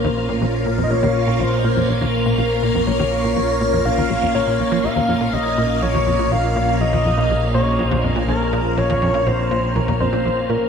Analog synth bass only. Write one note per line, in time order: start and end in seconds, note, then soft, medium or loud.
0.04 0.09 D#2 loud
0.29 0.37 A#2 medium
0.41 0.46 A#1 medium
0.66 0.74 A#2 medium
0.78 0.86 F2 medium
0.90 0.95 A#1 medium
1.03 1.07 D#2 loud
1.27 1.35 A#2 medium
1.40 1.44 A#1 medium
1.64 1.72 A#2 medium
1.77 1.84 F2 medium
1.89 1.94 A#1 medium
2.01 2.06 D#2 loud
2.26 2.34 A#2 medium
2.38 2.43 A#1 medium
2.63 2.70 A#2 medium
2.75 2.83 F2 medium
2.87 2.92 A#1 medium
2.99 3.04 D#2 loud
3.24 3.32 A#2 medium
3.36 3.41 A#1 medium
3.61 3.69 A#2 medium
3.73 3.81 F2 medium
3.85 3.90 A#1 loud
3.98 4.02 D#2 loud
4.10 4.18 A#1 medium
4.22 4.27 F2 medium
4.35 4.43 A#2 medium
4.47 4.59 A#2 medium
4.59 4.64 A#1 medium
4.72 4.79 F3 loud
4.84 4.89 A#1 loud
4.96 5.01 D#2 loud
5.08 5.16 F2 medium
5.21 5.29 A#2 medium
5.33 5.38 A#1 medium
5.58 5.66 A#2 medium
5.82 5.87 A#1 medium
5.94 5.99 D#2 loud
6.07 6.15 F2 medium
6.19 6.27 A#2 medium
6.31 6.36 A#1 medium
6.56 6.64 A#2 medium
6.81 6.85 A#1 loud
6.93 6.98 D#2 loud
7.05 7.13 F2 medium
7.17 7.25 A#2 medium
7.30 7.35 A#1 medium
7.54 7.62 A#2 medium
7.79 7.84 A#1 loud
7.91 7.96 D#2 loud
8.04 8.11 F2 medium
8.16 8.24 A#2 medium
8.28 8.33 A#1 medium
8.53 8.61 A#2 medium
8.77 8.82 A#1 loud
8.90 8.94 D#2 loud
9.02 9.10 F2 medium
9.14 9.22 A#2 medium
9.26 9.31 A#1 medium
9.51 9.59 A#2 medium
9.76 9.80 A#1 loud
9.88 9.93 D#2 loud
10.00 10.08 F2 medium
10.13 10.21 A#2 medium
10.25 10.30 A#1 medium
10.50 10.57 A#2 medium